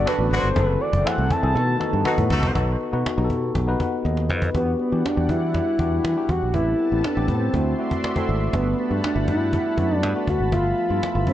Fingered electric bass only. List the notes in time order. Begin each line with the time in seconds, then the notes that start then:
0.19 A1
0.31 G#1
0.43 G1
0.56 F#1
0.93 F#1
1.18 C2
1.43 C2
1.55 B2
1.93 G2
2.18 A2
2.31 C#2
2.43 C2
2.55 B1
2.93 B2
3.18 B1
3.30 B2
3.55 B1
4.05 D#2
4.30 F2
4.55 E2
4.92 E3
5.17 E2
5.29 E3
5.79 E2
6.04 E3
6.29 E2
6.42 A#1
6.54 A1
6.92 A1
7.17 A1
7.28 A2
7.54 D2
8.29 G#1
8.54 G1
8.91 G2
9.16 G1
9.28 G2
9.78 F#2
10.03 G2
10.27 D2
10.40 G#1
10.52 G1
10.90 G2
11.15 G1
11.27 G2